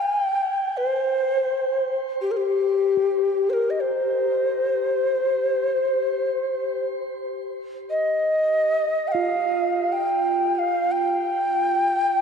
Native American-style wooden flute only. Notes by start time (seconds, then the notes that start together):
Already playing: G5
0.06 G#5
0.22 G5
0.77 C5
2.22 G4
2.31 A#4
2.37 G4
3.50 A#4 C5
3.70 D#5
3.75 D#5
3.80 C5
7.90 D#5
9.08 G5
9.12 F5
9.92 G5
10.55 F5 G5
10.92 G5